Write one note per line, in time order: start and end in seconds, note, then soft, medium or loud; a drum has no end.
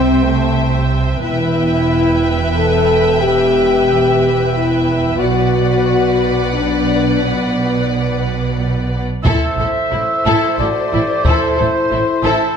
0.00 1.22 C2 medium
0.00 1.21 C3 soft
0.00 0.22 C4 medium
0.00 1.17 C5 soft
0.00 1.17 E5 soft
0.00 1.17 G5 medium
0.24 0.89 A3 medium
1.21 5.17 E1 medium
1.21 5.17 E2 medium
1.21 2.52 E4 medium
1.21 5.16 B4 medium
1.21 5.17 E5 medium
1.21 5.17 G5 medium
2.56 3.21 A4 medium
3.22 4.54 G4 medium
4.54 5.20 E4 medium
5.19 9.02 B1 soft
5.19 9.01 B2 soft
5.19 6.53 F#4 medium
5.19 9.01 B4 soft
5.19 9.01 D5 medium
5.19 9.02 F#5 medium
6.53 7.20 D4 medium
7.22 8.92 B3 soft
9.25 9.34 A1 medium
9.25 9.33 A2 medium
9.25 12.57 E4 medium
9.25 9.57 E4 soft
9.25 9.56 A4 medium
9.25 12.57 A4 medium
9.25 12.57 C5 medium
9.25 12.57 C5 soft
9.25 10.55 E5 medium
9.25 12.57 E5 medium
9.25 taiko medium
9.58 9.66 A1 soft
9.58 9.68 A2 soft
9.58 9.67 E4 soft
9.58 9.67 A4 soft
9.91 10.00 A1 soft
9.91 10.02 A2 soft
9.91 9.99 E4 soft
9.91 10.00 E4 soft
9.91 10.56 E4 soft
10.25 10.35 A1 medium
10.25 10.35 A2 medium
10.25 10.57 E4 medium
10.25 10.56 A4 medium
10.58 10.67 A1 soft
10.58 10.69 A2 soft
10.58 10.68 E4 soft
10.58 10.93 F#4 soft
10.58 10.66 A4 soft
10.58 11.25 D5 medium
10.92 11.02 A1 soft
10.92 11.02 A2 soft
10.92 11.00 E4 soft
10.92 11.01 E4 soft
10.92 11.25 G4 soft
11.24 11.34 A1 medium
11.24 11.35 A2 medium
11.24 11.56 E4 medium
11.24 11.58 A4 medium
11.24 11.56 A4 medium
11.24 12.24 C5 medium
11.24 taiko medium
11.57 11.67 A1 soft
11.57 11.68 A2 soft
11.57 12.57 E4 medium
11.57 11.66 E4 soft
11.57 11.65 A4 soft
11.91 12.00 A1 soft
11.91 12.01 A2 soft
11.91 11.99 E4 soft
12.24 12.32 A1 medium
12.24 12.33 A2 medium
12.24 12.55 E4 medium
12.24 12.55 A4 medium
12.24 12.57 A4 medium